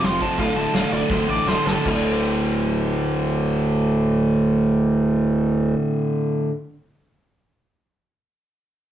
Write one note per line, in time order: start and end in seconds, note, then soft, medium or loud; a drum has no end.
0.03 0.25 F1 loud
0.03 0.19 F2 medium
0.03 0.20 C3 medium
0.03 0.20 F3 loud
0.03 0.21 C6 medium
0.03 snare loud
0.03 open hi-hat medium
0.21 0.37 F2 medium
0.21 0.37 C3 medium
0.21 0.37 F3 medium
0.21 0.38 A5 medium
0.21 kick medium
0.38 0.49 D1 medium
0.38 0.56 D2 medium
0.38 0.55 A2 loud
0.38 0.54 D3 loud
0.38 0.55 F5 loud
0.38 kick loud
0.38 open hi-hat medium
0.56 0.66 D1 medium
0.56 0.73 D2 medium
0.56 0.74 A2 medium
0.56 0.74 D3 medium
0.56 0.73 A5 medium
0.74 0.84 D1 medium
0.74 0.92 D2 loud
0.74 0.92 A2 medium
0.74 0.91 D3 loud
0.74 0.91 F5 medium
0.74 snare loud
0.74 open hi-hat medium
0.92 1.03 D1 medium
0.92 1.09 D2 medium
0.92 1.09 A2 medium
0.92 1.11 D3 medium
0.92 1.10 D5 medium
1.10 1.21 D1 loud
1.10 1.27 D2 medium
1.10 1.27 A2 medium
1.10 1.27 D3 loud
1.10 1.29 C5 medium
1.10 kick loud
1.10 snare medium
1.28 1.39 A1 medium
1.28 1.45 D2 medium
1.28 1.46 A2 medium
1.28 1.46 D3 medium
1.28 1.48 D5 medium
1.46 1.58 D1 loud
1.46 1.66 D2 medium
1.46 1.65 A2 medium
1.46 1.65 D3 loud
1.46 1.66 C5 medium
1.46 snare medium
1.66 1.77 G1 medium
1.66 1.83 D2 medium
1.66 1.84 A2 medium
1.66 1.84 D3 medium
1.66 1.85 A4 loud
1.66 snare medium
1.85 5.75 D1 medium
1.85 6.49 D2 medium
1.85 6.50 A2 medium
1.85 6.51 D3 medium
1.85 kick loud
1.85 crash medium